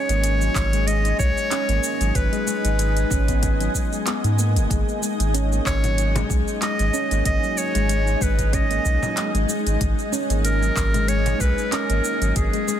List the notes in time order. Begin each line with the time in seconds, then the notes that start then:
Already playing: G#3 D#4 C#5 D#5 G#5
0.09 G#1 A#3, closed hi-hat, shaker
0.24 closed hi-hat, shaker
0.41 F#3, shaker
0.55 G#1, kick, clap, shaker
0.73 G#3, closed hi-hat, shaker
0.87 G#3 D#5, closed hi-hat, shaker
1.05 closed hi-hat, shaker
1.19 B1 G#3 C#5, kick, shaker
1.37 shaker
1.51 C#4, clap, closed hi-hat, shaker
1.69 G#1 A#3, closed hi-hat, shaker
1.84 shaker
2.00 G#1 F#3, closed hi-hat, shaker
2.15 G#1 B4, kick, closed hi-hat, shaker
2.33 G#3, closed hi-hat, shaker
2.47 G#3, shaker
2.65 G#1, closed hi-hat, shaker
2.79 G#3, closed hi-hat, shaker
2.97 closed hi-hat, shaker
3.11 G#1 C#4, kick, shaker
3.28 B3, kick, closed hi-hat, shaker
3.43 kick, closed hi-hat, shaker
3.60 F#3, closed hi-hat, shaker
3.75 kick, shaker
3.92 G#3, shaker
4.07 B3, clap, closed hi-hat, shaker
4.24 G#2, closed hi-hat, shaker
4.38 A#3, shaker
4.56 F#1, closed hi-hat, shaker
4.70 G#1 G#3, kick, closed hi-hat, shaker
4.89 shaker
5.02 G#3, shaker
5.20 G#1, closed hi-hat, shaker
5.34 C#4, closed hi-hat, shaker
5.52 A#3, shaker
5.66 G#1 C#5, kick, clap, shaker
5.84 F#3, closed hi-hat, frame drum, shaker
5.98 closed hi-hat, shaker
6.15 G#3, closed hi-hat, frame drum, shaker
6.30 B1 G#3, kick, shaker
6.48 shaker
6.62 G#3 D#5, clap, closed hi-hat, shaker
6.79 G#1, closed hi-hat, shaker
6.93 C#4, shaker
7.11 G#1 A#3, closed hi-hat, shaker
7.25 G#1 D#5, kick, closed hi-hat, shaker
7.43 F#3, shaker
7.58 C#5, shaker
7.75 G#1 G#3, closed hi-hat, shaker
7.89 G#3, closed hi-hat, shaker
8.07 shaker
8.21 G#1 G#3 B4, kick, shaker
8.39 kick, closed hi-hat, shaker
8.53 C#4 D#5, kick, closed hi-hat, shaker
8.71 A#3, closed hi-hat, shaker
8.85 B1, kick, shaker
9.03 F#3, frame drum, shaker
9.17 clap, closed hi-hat, shaker
9.34 G#1 G#3, closed hi-hat, shaker
9.49 G#3, shaker
9.66 G#1, closed hi-hat, shaker
9.81 G#1 G#3, kick, closed hi-hat, shaker
9.99 shaker
10.12 C#4, shaker
10.30 G#1 A#3, closed hi-hat, shaker
10.45 A#4, closed hi-hat, shaker
10.62 F#3, shaker
10.77 G#1, kick, clap, shaker
10.94 G#3, closed hi-hat, frame drum, shaker
11.08 G#3 C#5, closed hi-hat, shaker
11.26 closed hi-hat, frame drum, shaker
11.40 B1 G#3 B4, kick, shaker
11.58 shaker
11.72 C#4 A#4, clap, closed hi-hat, shaker
11.89 G#1 A#3, closed hi-hat, shaker
12.05 shaker
12.21 G#1 F#3, closed hi-hat, shaker
12.36 G#1 G#4, kick, closed hi-hat, shaker
12.53 G#3, closed hi-hat, shaker
12.68 G#3, shaker